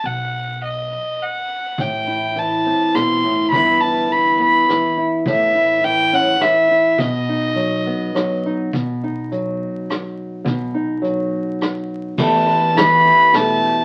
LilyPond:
<<
  \new Staff \with { instrumentName = "Violin" } { \time 3/4 \key b \phrygian \tempo 4 = 104 fis''4 dis''4 fis''4 | g''4 a''4 c'''4 | b''8 a''8 b''8 b''4 r8 | e''4 g''8 fis''8 e''4 |
dis''2~ dis''8 r8 | r2. | r2. | a''4 b''4 a''4 | }
  \new Staff \with { instrumentName = "Steel-string acoustic guitar" } { \time 3/4 \key b \phrygian << { r2. | r8 e'4 c'4. | <e b e' b'>8 e'4 b4 e'8 | r8 e'4 cis'4 e'8 |
r8 dis'4 b4 dis'8 | r8 dis'2~ dis'8 | r8 dis'2~ dis'8 | <a g' b'>8 b'4 g'8 a8 g'8 | } \\ { r2. | a,4 e4 b,8 a,8 | g,4 e4 e4 | a,4 e4 e4 |
b,4 fis4 fis4 | b,4 fis2 | b,4 fis2 | e,4 e4 b,4 | } >> }
  \new Staff \with { instrumentName = "Upright bass" } { \clef bass \time 3/4 \key b \phrygian b,,2 r4 | a,,2 r4 | g,,2 r4 | a,,2 r4 |
b,,2 r4 | b,,2 r4 | b,,2 r4 | e,2 r4 | }
  \new DrumStaff \with { instrumentName = "Drums" } \drummode { \time 3/4 r4 r4 r4 | <hh bd>4 hh4 <hh ss>4 | <hh bd>4 hh4 <hh ss>4 | <hh bd>4 hh4 <hh ss>4 |
<hh bd>4 hh4 <hh ss>4 | <hh bd>4 hh4 <hh ss>4 | <hh bd>4 hh4 <hh ss>4 | <cymc bd>4 <hh sn>4 <hh sn>4 | }
>>